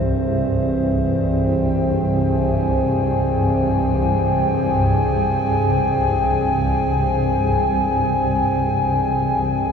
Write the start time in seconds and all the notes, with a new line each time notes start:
Already playing: C2 G2 E3 C4 G#4 C5 E5
1.22 G5
2.14 G#5